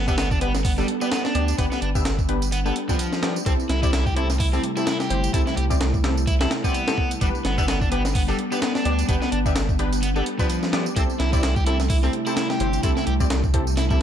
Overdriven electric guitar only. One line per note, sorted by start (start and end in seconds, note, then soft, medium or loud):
0.08 0.16 B3 medium
0.18 0.28 B3 medium
0.31 0.40 D4 medium
0.41 0.52 B3 medium
0.65 0.71 B3 medium
0.78 0.86 G3 medium
1.01 1.09 B3 medium
1.11 1.22 B3 medium
1.25 1.58 D4 medium
1.58 1.65 B3 medium
1.72 1.80 B3 medium
1.82 1.88 D4 medium
2.52 2.59 B3 medium
2.66 2.74 B3 medium
2.89 3.35 F3 medium
3.46 3.52 C4 medium
3.70 3.80 E4 medium
3.83 3.91 E4 loud
3.93 4.03 E4 medium
4.07 4.16 G4 medium
4.17 4.27 E4 medium
4.40 4.46 E4 medium
4.53 4.61 C4 medium
4.77 4.85 E4 loud
4.87 4.97 E4 medium
5.00 5.33 G4 medium
5.34 5.40 E4 medium
5.47 5.55 E4 medium
5.57 5.63 G4 medium
6.27 6.34 E4 medium
6.41 6.49 E4 medium
6.64 7.10 B3 medium
7.21 7.27 G3 medium
7.45 7.55 B3 medium
7.58 7.66 B3 medium
7.68 7.78 B3 medium
7.81 7.90 D4 medium
7.91 8.02 B3 medium
8.15 8.21 B3 medium
8.28 8.36 G3 medium
8.52 8.60 B3 medium
8.62 8.72 B3 medium
8.75 9.08 D4 medium
9.09 9.15 B3 medium
9.22 9.30 B3 medium
9.32 9.38 D4 medium
10.02 10.08 B3 medium
10.16 10.24 B3 medium
10.39 10.85 F3 loud
10.96 11.02 C4 loud
11.19 11.30 E4 medium
11.33 11.41 E4 loud
11.43 11.53 E4 medium
11.56 11.65 G4 medium
11.66 11.77 E4 medium
11.90 11.96 E4 medium
12.03 12.11 C4 medium
12.26 12.34 E4 loud
12.37 12.47 E4 medium
12.50 12.83 G4 medium
12.83 12.90 E4 medium
12.97 13.05 E4 medium
13.07 13.13 G4 medium
13.77 13.84 E4 medium
13.90 13.98 E4 medium